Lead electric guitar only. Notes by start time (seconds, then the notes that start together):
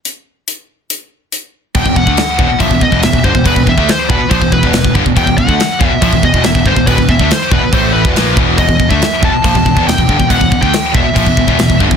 1.75 G5
1.96 F#5
2.60 E5
2.83 D#5
3.04 E5
3.24 C5
3.47 B4
3.69 E5
3.90 C5
4.10 B4
4.30 C5
4.53 B4
5.17 G5
5.38 F#5
5.88 E5
6.02 E5
6.25 D#5
6.45 E5
6.67 C5
6.87 B4
7.09 E5
7.32 C5
7.53 B4
7.74 C5
7.93 B4
8.58 D#5
8.90 E5
9.25 A5
9.88 G5
10.31 F#5
10.62 G5
10.94 E5